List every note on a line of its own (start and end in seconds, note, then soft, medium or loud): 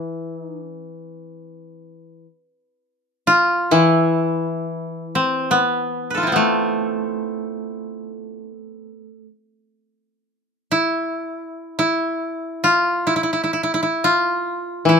0.00 2.24 E3 soft
0.00 0.35 E4 soft
0.35 0.54 D#4 soft
0.54 0.73 D4 soft
0.73 0.92 C#4 soft
0.92 1.92 C4 soft
3.27 3.77 F4 medium
3.71 7.10 E3 soft
3.71 5.98 E4 medium
5.15 5.57 C4 medium
5.51 6.32 B3 medium
6.10 6.33 B4 soft
6.14 8.36 F4 soft
6.14 8.05 A4 soft
6.23 8.49 E4 soft
6.27 8.87 C4 soft
6.32 9.24 A3 soft
6.32 9.01 B3 soft
10.72 11.78 E4 soft
11.79 12.70 E4 medium
12.64 13.13 F4 medium
13.07 13.16 E4 medium
13.16 13.23 E4 soft
13.23 13.32 E4 soft
13.33 13.43 E4 soft
13.44 13.53 E4 soft
13.53 13.63 E4 soft
13.63 13.73 E4 soft
13.74 13.82 E4 soft
13.83 14.10 E4 soft
14.04 14.95 F4 medium
14.85 15.00 E3 soft
14.85 15.00 E4 soft